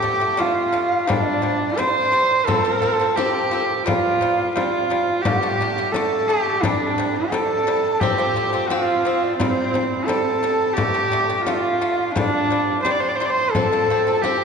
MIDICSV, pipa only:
0, 0, Header, 1, 2, 480
1, 0, Start_track
1, 0, Tempo, 691244
1, 1728, Time_signature, 4, 2, 24, 8
1, 10027, End_track
2, 0, Start_track
2, 0, Title_t, "Pipa"
2, 0, Program_c, 0, 105
2, 17, Note_on_c, 0, 50, 68
2, 27, Note_on_c, 0, 57, 76
2, 126, Note_off_c, 0, 50, 0
2, 131, Note_off_c, 0, 57, 0
2, 139, Note_on_c, 0, 50, 65
2, 148, Note_on_c, 0, 57, 64
2, 247, Note_off_c, 0, 50, 0
2, 251, Note_off_c, 0, 57, 0
2, 259, Note_on_c, 0, 50, 87
2, 267, Note_on_c, 0, 57, 93
2, 464, Note_off_c, 0, 50, 0
2, 468, Note_off_c, 0, 57, 0
2, 504, Note_on_c, 0, 50, 70
2, 510, Note_on_c, 0, 57, 79
2, 707, Note_off_c, 0, 50, 0
2, 710, Note_off_c, 0, 57, 0
2, 746, Note_on_c, 0, 48, 86
2, 755, Note_on_c, 0, 55, 95
2, 948, Note_off_c, 0, 48, 0
2, 953, Note_off_c, 0, 55, 0
2, 986, Note_on_c, 0, 48, 66
2, 994, Note_on_c, 0, 55, 66
2, 1189, Note_off_c, 0, 48, 0
2, 1193, Note_off_c, 0, 55, 0
2, 1233, Note_on_c, 0, 48, 81
2, 1241, Note_on_c, 0, 55, 94
2, 1432, Note_off_c, 0, 48, 0
2, 1437, Note_off_c, 0, 55, 0
2, 1471, Note_on_c, 0, 48, 66
2, 1480, Note_on_c, 0, 55, 74
2, 1672, Note_off_c, 0, 48, 0
2, 1676, Note_off_c, 0, 55, 0
2, 1718, Note_on_c, 0, 53, 88
2, 1724, Note_on_c, 0, 60, 87
2, 1820, Note_off_c, 0, 53, 0
2, 1822, Note_off_c, 0, 60, 0
2, 1837, Note_on_c, 0, 53, 66
2, 1845, Note_on_c, 0, 60, 71
2, 1940, Note_off_c, 0, 53, 0
2, 1943, Note_off_c, 0, 60, 0
2, 1956, Note_on_c, 0, 53, 69
2, 1963, Note_on_c, 0, 60, 77
2, 2059, Note_off_c, 0, 53, 0
2, 2063, Note_off_c, 0, 60, 0
2, 2080, Note_on_c, 0, 53, 67
2, 2090, Note_on_c, 0, 60, 74
2, 2181, Note_off_c, 0, 53, 0
2, 2186, Note_off_c, 0, 60, 0
2, 2204, Note_on_c, 0, 53, 92
2, 2212, Note_on_c, 0, 60, 97
2, 2399, Note_off_c, 0, 53, 0
2, 2403, Note_off_c, 0, 60, 0
2, 2439, Note_on_c, 0, 53, 71
2, 2450, Note_on_c, 0, 60, 78
2, 2637, Note_off_c, 0, 53, 0
2, 2643, Note_off_c, 0, 60, 0
2, 2679, Note_on_c, 0, 48, 86
2, 2686, Note_on_c, 0, 55, 96
2, 2877, Note_off_c, 0, 48, 0
2, 2881, Note_off_c, 0, 55, 0
2, 2923, Note_on_c, 0, 48, 66
2, 2931, Note_on_c, 0, 55, 75
2, 3120, Note_off_c, 0, 48, 0
2, 3124, Note_off_c, 0, 55, 0
2, 3164, Note_on_c, 0, 48, 87
2, 3172, Note_on_c, 0, 55, 92
2, 3360, Note_off_c, 0, 48, 0
2, 3365, Note_off_c, 0, 55, 0
2, 3405, Note_on_c, 0, 48, 69
2, 3412, Note_on_c, 0, 55, 76
2, 3601, Note_off_c, 0, 48, 0
2, 3604, Note_off_c, 0, 55, 0
2, 3646, Note_on_c, 0, 50, 82
2, 3651, Note_on_c, 0, 57, 91
2, 3746, Note_off_c, 0, 50, 0
2, 3748, Note_off_c, 0, 57, 0
2, 3768, Note_on_c, 0, 50, 68
2, 3772, Note_on_c, 0, 57, 72
2, 3866, Note_off_c, 0, 50, 0
2, 3869, Note_off_c, 0, 57, 0
2, 3893, Note_on_c, 0, 50, 69
2, 3902, Note_on_c, 0, 57, 79
2, 3989, Note_off_c, 0, 50, 0
2, 3993, Note_off_c, 0, 57, 0
2, 4013, Note_on_c, 0, 50, 59
2, 4018, Note_on_c, 0, 57, 69
2, 4109, Note_off_c, 0, 50, 0
2, 4112, Note_off_c, 0, 57, 0
2, 4127, Note_on_c, 0, 50, 97
2, 4138, Note_on_c, 0, 57, 97
2, 4322, Note_off_c, 0, 50, 0
2, 4328, Note_off_c, 0, 57, 0
2, 4369, Note_on_c, 0, 50, 75
2, 4375, Note_on_c, 0, 57, 81
2, 4563, Note_off_c, 0, 50, 0
2, 4566, Note_off_c, 0, 57, 0
2, 4608, Note_on_c, 0, 48, 96
2, 4616, Note_on_c, 0, 55, 99
2, 4803, Note_off_c, 0, 48, 0
2, 4807, Note_off_c, 0, 55, 0
2, 4846, Note_on_c, 0, 48, 68
2, 4857, Note_on_c, 0, 55, 73
2, 5042, Note_off_c, 0, 48, 0
2, 5047, Note_off_c, 0, 55, 0
2, 5086, Note_on_c, 0, 48, 86
2, 5096, Note_on_c, 0, 55, 96
2, 5281, Note_off_c, 0, 48, 0
2, 5286, Note_off_c, 0, 55, 0
2, 5326, Note_on_c, 0, 48, 70
2, 5331, Note_on_c, 0, 55, 77
2, 5521, Note_off_c, 0, 48, 0
2, 5524, Note_off_c, 0, 55, 0
2, 5564, Note_on_c, 0, 53, 79
2, 5574, Note_on_c, 0, 60, 91
2, 5665, Note_off_c, 0, 53, 0
2, 5669, Note_off_c, 0, 60, 0
2, 5682, Note_on_c, 0, 53, 64
2, 5690, Note_on_c, 0, 60, 71
2, 5783, Note_off_c, 0, 53, 0
2, 5787, Note_off_c, 0, 60, 0
2, 5804, Note_on_c, 0, 53, 66
2, 5811, Note_on_c, 0, 60, 73
2, 5904, Note_off_c, 0, 53, 0
2, 5908, Note_off_c, 0, 60, 0
2, 5922, Note_on_c, 0, 53, 63
2, 5929, Note_on_c, 0, 60, 69
2, 6023, Note_off_c, 0, 53, 0
2, 6027, Note_off_c, 0, 60, 0
2, 6043, Note_on_c, 0, 53, 94
2, 6050, Note_on_c, 0, 60, 102
2, 6239, Note_off_c, 0, 53, 0
2, 6243, Note_off_c, 0, 60, 0
2, 6285, Note_on_c, 0, 53, 68
2, 6294, Note_on_c, 0, 60, 80
2, 6480, Note_off_c, 0, 53, 0
2, 6485, Note_off_c, 0, 60, 0
2, 6525, Note_on_c, 0, 48, 86
2, 6534, Note_on_c, 0, 55, 97
2, 6720, Note_off_c, 0, 48, 0
2, 6725, Note_off_c, 0, 55, 0
2, 6763, Note_on_c, 0, 48, 60
2, 6771, Note_on_c, 0, 55, 72
2, 6959, Note_off_c, 0, 48, 0
2, 6963, Note_off_c, 0, 55, 0
2, 6999, Note_on_c, 0, 48, 84
2, 7007, Note_on_c, 0, 55, 94
2, 7196, Note_off_c, 0, 48, 0
2, 7201, Note_off_c, 0, 55, 0
2, 7241, Note_on_c, 0, 48, 64
2, 7247, Note_on_c, 0, 55, 75
2, 7437, Note_off_c, 0, 48, 0
2, 7440, Note_off_c, 0, 55, 0
2, 7476, Note_on_c, 0, 50, 81
2, 7484, Note_on_c, 0, 57, 87
2, 7579, Note_off_c, 0, 50, 0
2, 7583, Note_off_c, 0, 57, 0
2, 7597, Note_on_c, 0, 50, 62
2, 7602, Note_on_c, 0, 57, 69
2, 7699, Note_off_c, 0, 50, 0
2, 7701, Note_off_c, 0, 57, 0
2, 7720, Note_on_c, 0, 50, 69
2, 7729, Note_on_c, 0, 57, 77
2, 7820, Note_off_c, 0, 50, 0
2, 7825, Note_off_c, 0, 57, 0
2, 7844, Note_on_c, 0, 50, 63
2, 7847, Note_on_c, 0, 57, 69
2, 7942, Note_off_c, 0, 50, 0
2, 7944, Note_off_c, 0, 57, 0
2, 7962, Note_on_c, 0, 50, 87
2, 7969, Note_on_c, 0, 57, 96
2, 8156, Note_off_c, 0, 50, 0
2, 8160, Note_off_c, 0, 57, 0
2, 8204, Note_on_c, 0, 50, 69
2, 8208, Note_on_c, 0, 57, 77
2, 8397, Note_off_c, 0, 50, 0
2, 8399, Note_off_c, 0, 57, 0
2, 8441, Note_on_c, 0, 48, 89
2, 8449, Note_on_c, 0, 55, 97
2, 8635, Note_off_c, 0, 48, 0
2, 8639, Note_off_c, 0, 55, 0
2, 8683, Note_on_c, 0, 48, 62
2, 8691, Note_on_c, 0, 55, 72
2, 8876, Note_off_c, 0, 48, 0
2, 8880, Note_off_c, 0, 55, 0
2, 8922, Note_on_c, 0, 48, 85
2, 8929, Note_on_c, 0, 55, 99
2, 9115, Note_off_c, 0, 48, 0
2, 9118, Note_off_c, 0, 55, 0
2, 9168, Note_on_c, 0, 48, 68
2, 9176, Note_on_c, 0, 55, 74
2, 9357, Note_off_c, 0, 48, 0
2, 9361, Note_off_c, 0, 55, 0
2, 9408, Note_on_c, 0, 53, 80
2, 9415, Note_on_c, 0, 60, 90
2, 9501, Note_off_c, 0, 53, 0
2, 9505, Note_off_c, 0, 60, 0
2, 9530, Note_on_c, 0, 53, 65
2, 9536, Note_on_c, 0, 60, 70
2, 9622, Note_off_c, 0, 53, 0
2, 9625, Note_off_c, 0, 60, 0
2, 9653, Note_on_c, 0, 53, 67
2, 9660, Note_on_c, 0, 60, 73
2, 9743, Note_off_c, 0, 53, 0
2, 9747, Note_off_c, 0, 60, 0
2, 9770, Note_on_c, 0, 53, 66
2, 9777, Note_on_c, 0, 60, 69
2, 9861, Note_off_c, 0, 53, 0
2, 9865, Note_off_c, 0, 60, 0
2, 9886, Note_on_c, 0, 53, 92
2, 9893, Note_on_c, 0, 60, 97
2, 10027, Note_off_c, 0, 53, 0
2, 10027, Note_off_c, 0, 60, 0
2, 10027, End_track
0, 0, End_of_file